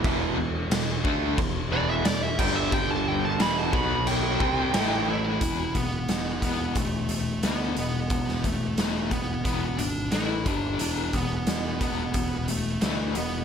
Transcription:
<<
  \new Staff \with { instrumentName = "Lead electric guitar" } { \time 4/4 \key e \minor \tempo 4 = 89 << { r2 r8 d''16 e''16 d''16 e''16 g''16 e''16 | g''16 a''16 g''16 a''16 b''16 a''16 b''8 g''2 | r1 | r1 |
r1 | } \\ { r1 | r2. r8 e'8~ | e'8 b4 b8 a8 a8 b8 b8~ | b8 a4 b8 b8 d'8 e'8 d'8 |
d'8 b4 b4 a8 a8 b8 | } >> }
  \new Staff \with { instrumentName = "Overdriven electric guitar" } { \clef bass \time 4/4 \key e \minor <e, b, e>8 <e, b,>8 <e, b,>8 <d a d'>8 <e, b,>8 <e, b, e>8 <e, b,>8 <g, d g>8~ | <g, d g>4 <e, b, e>8 <b, fis b>4 <c g c'>8 <a, e a>4 | <e, b, e>8 <e, b,>8 <e, b,>8 <e, b, e>8 <e, b,>8 <e, b,>8 <e, b, e>8 <e, b,>8 | <e, b,>8 <e, b,>8 <e, b, e>8 <e, b,>8 <e, b, e>8 <e, b,>8 <a, e a>8 <g, d g>8 |
<e, b, e>8 <e, b,>8 <e, b,>8 <e, b, e>8 <e, b,>8 <e, b,>8 <e, b, e>8 <e, b,>8 | }
  \new Staff \with { instrumentName = "Overdriven electric guitar" } { \clef bass \time 4/4 \key e \minor <e, b, e>8 <e, b,>8 <e, b,>8 <d a d'>8 <e, b,>8 <e, b, e>8 <e, b,>8 <g, d g>8~ | <g, d g>4 <e, b, e>8 <b, fis b>4 <c g c'>8 <a, e a>4 | r1 | r1 |
r1 | }
  \new Staff \with { instrumentName = "Picked electric bass" } { \clef bass \time 4/4 \key e \minor e,,8 e,,8 e,,8 d,8 e,,8 e,,8 e,,8 g,,8~ | g,,4 e,,8 b,,4 c,8 a,,4 | e,,8 e,,8 e,,8 e,,8 e,,4 d,8 e,,8 | e,,4 e,,4 e,,8 gis,,8 a,,8 g,,8 |
e,,8 e,,8 e,,8 e,,8 e,,4 d,8 e,,8 | }
  \new DrumStaff \with { instrumentName = "Drums" } \drummode { \time 4/4 <cymc bd>4 <cymc sn>8 bd8 <cymc bd>4 <cymc sn>8 <cymc bd>8 | <cymc bd>4 <cymc sn>8 bd8 cymc8 bd8 <cymc sn>4 | <hh bd>8 <hh bd>8 <hh sn>8 <hh bd>8 <hh bd>8 hh8 <hh sn>8 hh8 | <hh bd>16 sn16 <hh bd>8 <hh sn>8 <hh bd>8 <hh bd>8 hh8 <hh sn>8 <hh bd>8 |
hh8 <hh bd>8 <hh sn>8 <hh bd>8 <hh bd>8 hh8 <hh sn>8 hh8 | }
>>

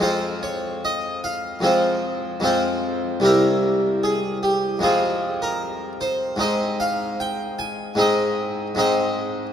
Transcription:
<<
  \new Staff \with { instrumentName = "Harpsichord" } { \time 4/4 \key f \minor \tempo 4 = 76 c''8 des''8 ees''8 f''8 c''4 c''4 | bes'4 aes'8 g'8 aes'8. bes'8. c''8 | ees''8 f''8 g''8 aes''8 ees''4 ees''4 | }
  \new Staff \with { instrumentName = "Harpsichord" } { \time 4/4 \key f \minor <f, aes c' f'>2 <f, aes c' f'>4 <f, aes c' f'>4 | <c, g c' e'>2 <f, aes c' f'>2 | <aes, aes c' ees'>2 <aes, aes c' ees'>4 <aes, aes c' ees'>4 | }
>>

